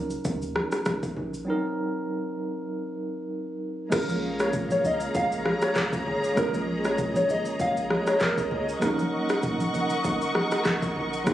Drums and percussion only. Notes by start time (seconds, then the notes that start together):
0.10 shaker
0.25 kick, low conga, shaker
0.42 shaker
0.56 cross-stick, high conga
0.72 cross-stick, shaker
0.86 kick, cross-stick, high conga, shaker
1.03 kick, shaker
1.17 low conga
1.34 shaker
3.92 kick, cross-stick, crash, low conga, shaker
4.09 high conga, shaker
4.23 high conga
4.39 cross-stick, shaker
4.53 kick, mid tom, shaker
4.71 high conga, shaker
4.84 high conga, low conga, shaker
5.00 shaker
5.15 kick, low conga, shaker
5.32 shaker
5.46 cross-stick, high conga
5.62 cross-stick, shaker
5.76 kick, cross-stick, clap, high conga, shaker
5.93 kick, shaker
6.07 low conga
6.24 shaker
6.37 kick, cross-stick, low conga, shaker
6.54 high conga, shaker
6.68 high conga
6.84 cross-stick, shaker
6.98 kick, mid tom, shaker
7.16 high conga, shaker
7.29 high conga, low conga, shaker
7.45 shaker
7.60 kick, low conga, shaker
7.77 shaker
7.90 cross-stick, high conga
8.07 cross-stick, shaker
8.20 kick, cross-stick, clap, high conga, shaker
8.38 kick, shaker
8.51 low conga
8.69 shaker
8.82 kick, cross-stick, low conga, shaker
8.99 high conga, shaker
9.12 high conga
9.29 cross-stick, shaker
9.43 kick, mid tom, shaker
9.60 high conga, shaker
9.74 high conga, low conga, shaker
9.90 shaker
10.04 kick, low conga, shaker
10.22 shaker
10.35 cross-stick, high conga
10.51 cross-stick, shaker
10.65 kick, cross-stick, clap, high conga, shaker
10.82 kick, shaker
10.96 low conga
11.13 shaker
11.26 kick, cross-stick, low conga, shaker